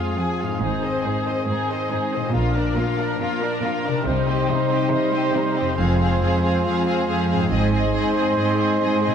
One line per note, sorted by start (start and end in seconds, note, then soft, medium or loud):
0.00 0.11 F2 soft
0.00 0.54 F2 soft
0.00 0.58 F3 soft
0.00 0.19 G#3 soft
0.00 2.30 C4 soft
0.00 0.18 F4 soft
0.00 0.57 F4 soft
0.00 0.51 G#4 soft
0.00 2.30 G#4 soft
0.00 0.56 C5 soft
0.00 0.18 F5 soft
0.18 0.54 F2 soft
0.18 0.41 F3 soft
0.18 0.40 G#4 soft
0.18 0.40 G#5 soft
0.39 2.27 G#2 soft
0.39 0.62 G#3 soft
0.39 0.61 F4 soft
0.39 0.62 F5 soft
0.48 2.29 D#4 soft
0.53 2.32 G#4 soft
0.57 2.34 C5 soft
0.61 0.98 G#1 soft
0.61 0.98 G#2 soft
0.61 2.31 D#3 soft
0.61 0.82 D#4 soft
0.61 0.81 G#4 soft
0.61 0.83 C5 soft
0.82 1.05 C4 soft
0.82 1.05 C5 soft
0.82 1.06 D#5 soft
1.04 1.41 G#2 soft
1.04 1.27 D#4 soft
1.04 1.26 G#4 soft
1.04 1.27 C5 soft
1.25 1.49 C4 soft
1.25 1.48 C5 soft
1.25 1.48 D#5 soft
1.47 1.84 G#2 soft
1.47 1.69 D#4 soft
1.47 1.68 G#4 soft
1.47 1.68 C5 soft
1.69 1.92 C4 soft
1.69 1.91 C5 soft
1.69 1.91 D#5 soft
1.91 2.27 G#2 soft
1.91 2.13 D#4 soft
1.91 2.12 G#4 soft
1.91 2.13 C5 soft
2.13 3.99 A#2 soft
2.13 2.34 C4 soft
2.13 2.34 C5 soft
2.13 2.35 D#5 soft
2.20 4.01 D4 soft
2.25 4.04 F4 soft
2.29 4.06 A#4 soft
2.34 2.70 A#1 soft
2.34 2.70 A#2 soft
2.34 4.03 F3 soft
2.34 2.55 A#3 soft
2.34 4.03 D4 soft
2.34 2.54 F4 soft
2.34 4.03 A#4 soft
2.34 2.55 F5 soft
2.56 2.78 D4 soft
2.56 2.77 A#4 soft
2.56 2.78 D5 soft
2.77 3.13 A#2 soft
2.77 2.99 A#3 soft
2.77 2.99 F4 soft
2.77 3.00 F5 soft
2.99 3.21 D4 soft
2.99 3.21 A#4 soft
2.99 3.21 D5 soft
3.20 3.56 A#2 soft
3.20 3.40 A#3 soft
3.20 3.41 F4 soft
3.20 3.41 F5 soft
3.41 3.64 D4 soft
3.41 3.63 A#4 soft
3.41 3.64 D5 soft
3.63 3.99 A#2 soft
3.63 3.85 A#3 soft
3.63 3.85 F4 soft
3.63 3.86 F5 soft
3.85 5.71 C3 soft
3.85 4.06 D4 soft
3.85 4.07 A#4 soft
3.85 4.07 D5 soft
3.92 5.64 C4 soft
3.97 5.76 D#4 soft
4.01 5.63 G3 soft
4.01 5.63 D#4 soft
4.01 5.78 G4 soft
4.06 4.42 C2 medium
4.06 4.42 C3 medium
4.06 4.26 G3 soft
4.06 4.26 D#4 soft
4.06 7.20 C5 medium
4.06 4.26 C5 soft
4.27 4.50 C4 soft
4.27 4.50 G4 soft
4.27 4.49 D#5 soft
4.49 4.86 C3 medium
4.49 4.71 G3 soft
4.49 4.71 D#4 soft
4.49 4.71 C5 soft
4.70 4.92 C4 soft
4.70 4.93 G4 soft
4.70 4.92 D#5 soft
4.92 5.29 C3 medium
4.92 5.13 G3 soft
4.92 5.13 D#4 soft
4.92 5.13 C5 soft
5.14 5.36 C4 soft
5.14 5.36 G4 soft
5.14 5.36 D#5 soft
5.35 5.72 C3 medium
5.35 5.57 G3 soft
5.35 5.57 D#4 soft
5.35 5.57 C5 soft
5.57 7.44 F2 soft
5.57 5.77 C4 soft
5.57 5.79 G4 soft
5.57 5.79 D#5 soft
5.65 7.37 C4 soft
5.70 7.49 F4 soft
5.74 7.46 G#4 soft
5.74 5.98 F5 soft
5.78 6.15 F1 medium
5.78 6.17 F2 medium
5.78 9.15 G#3 medium
5.78 5.99 C4 medium
5.78 7.49 F4 medium
5.78 6.00 G#4 soft
5.99 6.21 C4 soft
5.99 6.21 G#4 soft
5.99 6.20 F5 soft
6.21 6.60 F2 medium
6.21 6.42 C4 soft
6.21 6.43 G#4 soft
6.21 6.42 F5 soft
6.44 6.64 C4 soft
6.44 6.65 G#4 soft
6.44 6.64 F5 soft
6.65 7.03 F2 medium
6.65 6.86 C4 soft
6.65 6.86 G#4 medium
6.65 6.86 F5 soft
6.87 7.07 C4 soft
6.87 7.08 G#4 soft
6.87 7.08 F5 soft
7.08 7.46 F2 medium
7.08 7.29 C4 soft
7.08 7.29 G#4 soft
7.08 7.29 F5 soft
7.30 9.15 G#2 soft
7.30 7.50 C4 soft
7.30 7.50 G#4 soft
7.30 7.51 F5 soft
7.38 9.15 C4 soft
7.42 9.15 D#4 soft
7.47 9.15 G#4 soft
7.51 7.88 G#1 medium
7.51 7.90 G#2 medium
7.51 7.72 C4 medium
7.51 9.15 D#4 medium
7.51 7.72 G#4 soft
7.51 9.15 C5 medium
7.51 7.73 D#5 medium
7.73 7.94 C4 soft
7.73 7.93 G#4 soft
7.73 7.94 D#5 soft
7.94 8.33 G#2 medium
7.94 8.16 C4 soft
7.94 8.15 G#4 medium
7.94 8.15 D#5 soft
8.16 8.38 C4 soft
8.16 8.36 G#4 soft
8.16 8.37 D#5 soft
8.37 8.76 G#2 medium
8.37 8.59 C4 soft
8.37 8.57 G#4 soft
8.37 8.58 D#5 soft
8.58 8.80 C4 soft
8.58 8.80 G#4 soft
8.58 8.79 D#5 soft
8.81 9.15 G#2 medium
8.81 9.02 C4 soft
8.81 9.01 G#4 soft
8.81 9.02 D#5 soft
9.03 9.15 C4 soft
9.03 9.15 G#4 soft
9.03 9.15 D#5 soft
9.07 9.15 A#2 soft
9.11 9.15 A#3 soft